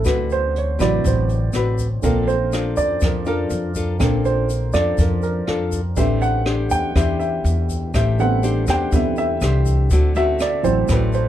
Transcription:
Already playing: C3 E3 F#3 B3 C4 E4 A4 B4
0.05 D2 D3 C4 F#4 B4, kick, cross-stick, closed hi-hat, shaker
0.30 C5, closed hi-hat, shaker
0.56 C#5, closed hi-hat
0.79 A1 C3 E3 F#3 C4 F#4 B4 D5, kick, cross-stick, closed hi-hat, shaker
1.04 A1 A2 C5, kick, closed hi-hat, shaker
1.29 closed hi-hat, shaker
1.53 A1 C4 F#4 B4, cross-stick, closed hi-hat, shaker
1.79 kick, closed hi-hat, shaker
2.02 A#1 D3 A#3 C4 D4 F4 A4 A#4, kick, closed hi-hat, shaker
2.28 C5, closed hi-hat, shaker
2.52 D4 F4 A4, cross-stick, closed hi-hat, shaker
2.77 F2 D5, kick, closed hi-hat, shaker
3.01 F2 F3 A#4, kick, cross-stick, closed hi-hat, shaker
3.25 D4 F4 A4 A#4, closed hi-hat, shaker
3.50 F2, closed hi-hat, shaker
3.75 D4 F4 A4, kick, closed hi-hat, shaker
3.99 A#1 D3 A#3 C4 D4 F4 A4 A#4, kick, cross-stick, closed hi-hat, shaker
4.25 C5, closed hi-hat, shaker
4.49 closed hi-hat, shaker
4.73 F2 D4 F4 A4 D5, kick, cross-stick, closed hi-hat, shaker
4.98 F2 F3 A#4, kick, closed hi-hat, shaker
5.22 A#4, closed hi-hat, shaker
5.47 F2 D4 F4 A4, cross-stick, closed hi-hat
5.72 kick, closed hi-hat, shaker
5.96 A1 D3 G3 A3 C4 D4 G4 B4 C5 E5, kick, closed hi-hat, shaker
6.22 F#5, closed hi-hat, shaker
6.46 D4 G4 C5, cross-stick, closed hi-hat
6.70 E2 G5, kick, closed hi-hat, shaker
6.95 E2 E3 D4 G4 C5 E5, kick, cross-stick, closed hi-hat, shaker
7.20 E5, closed hi-hat, shaker
7.44 E2, closed hi-hat, shaker
7.69 kick, closed hi-hat, shaker
7.94 A1 A3 D4 G4 C5 E5, kick, cross-stick, closed hi-hat, shaker
8.18 D3 G3 B3 C4 F#5, closed hi-hat, shaker
8.43 D4 G4 C5, closed hi-hat, shaker
8.67 E2 D4 G4 C5 G5, kick, cross-stick, closed hi-hat, shaker
8.92 E2 D3 E3 G3 B3 C4 E5, kick, closed hi-hat, shaker
9.16 E5, closed hi-hat, shaker
9.41 C2 D4 G4 C5, cross-stick, closed hi-hat, shaker
9.66 kick, closed hi-hat, shaker
9.90 D2 D3 A3 C4 F#4, kick, closed hi-hat, shaker
10.15 A3 C4 F#4 E5, closed hi-hat, shaker
10.39 D5, cross-stick, closed hi-hat, shaker
10.63 A1 E3 F#3 C4 C5, kick, closed hi-hat, shaker
10.88 A1 A2 A3 C4 F#4 B4, kick, cross-stick, closed hi-hat, shaker
11.13 C5, closed hi-hat, shaker

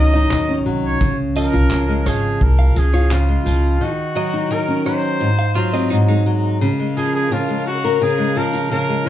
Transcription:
Already playing: C#2 D#3 F#3 C#4 D#4 D#5
0.14 D#4 D#5
0.31 D#2 D#3, clap
0.49 C#4
0.66 C2 F#3
0.85 C#5
1.01 C#2 C#3, kick
1.36 F3 A#4 D#5, tambourine
1.53 C2 F4
1.71 C#2 C#3, clap
1.88 G#3
2.06 G#1 F3 G#4 C#5, tambourine
2.41 C2 A#4, kick
2.59 F5
2.76 C#2 F3 G#4, tambourine
2.94 F4 C#5
3.11 C#3 F4, clap
3.28 G#3
3.46 C#2 F3, tambourine
3.81 D#3 F#4
4.15 F#3 D#5
4.33 D#4
4.51 D#3 A#4
4.68 C#4
4.86 F#3 C5 C#5
5.20 G#2
5.39 F5
5.55 F#3 F4
5.73 C4 D#5
5.90 G#2 D#4
6.08 G#3 D#4
6.26 F#3
6.61 C#3 C#4 A#4 F5
6.80 G#3
6.97 F3 G#4
7.15 G#4
7.32 C#3 F4
7.49 G#3
7.67 F#4
7.84 A#4
8.01 C#3 G#4
8.18 G#3
8.36 F3 A#4
8.54 F4
8.72 C#3 A#4
8.89 G#3

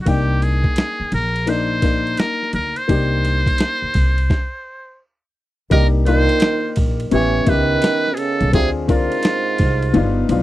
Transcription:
0.02 A#3 F#4
0.06 C2 D4 D#4 G4 G5, kick, ride
0.42 G#4, snare, ride
0.64 kick
0.76 snare, hi-hat pedal, ride
1.00 muted upright bass stroke
1.12 A#1 A#4, ride
1.36 ride
1.46 A#3 D4 D#4 A#4 C5, ride
1.82 A#3 D4 D#4 A#4, kick, snare, ride
2.07 ride
2.17 A#4, snare, hi-hat pedal, ride
2.43 snare
2.53 D2 A#4, ride
2.76 C5, ride
2.88 C2 A#3 D4 D#4 G4, kick, ride
3.25 snare, ride
3.46 kick, ride
3.58 snare, hi-hat pedal, ride
3.82 muted upright bass stroke
3.94 C2, kick, ride
4.18 ride
4.30 kick, snare
5.70 C2 D#3 A#3 D4 D#4 G4 A#4, kick, ride
6.06 D#3 A#3 D4 D#4 F4 C5, snare, ride
6.29 ride
6.40 snare, hi-hat pedal, ride
6.76 A#1, kick, ride
7.00 ride
7.11 A1 E3 B3 C#4 E4 G4 C#5, ride
7.46 C#2 D#3 B3 C#4 G4 B4 E5, kick, ride
7.82 snare, hi-hat pedal, ride
8.07 snare
8.13 B2 G#4
8.17 C#3 A4, ride
8.40 B1, ride
8.53 D2 C3 C4 D4 F4 G#4, kick, ride
8.88 G#2 C4 D4 F4 A#4, kick, snare, ride
9.12 ride
9.23 snare, hi-hat pedal, ride
9.58 C2, kick, ride
9.82 ride
9.93 G1 B3 D4 D#4 F4, ride
10.29 B1 B3 D4 D#4 F4, ride

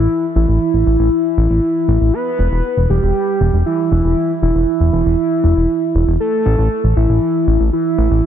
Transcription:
Already playing: E4
0.35 A1 E4
0.48 A1
0.74 A1
0.86 A1
0.99 A1
1.37 A1
1.50 A1
1.88 A1
2.01 A1
2.13 B4
2.39 E1
2.51 E1
2.77 E1
2.90 E1 G4
3.02 E1
3.40 E1
3.53 E1
3.66 E4
3.91 E1
4.04 E1
4.42 E1 E4
4.55 E1
4.80 E1
4.93 E1
5.06 E1
5.44 E1
5.56 E1
5.95 E1
6.07 E1
6.20 A4
6.46 A1
6.58 A1
6.84 A1
6.96 A1 E4
7.09 A1
7.47 A1
7.60 A1
7.73 E4
7.98 A1
8.11 A1

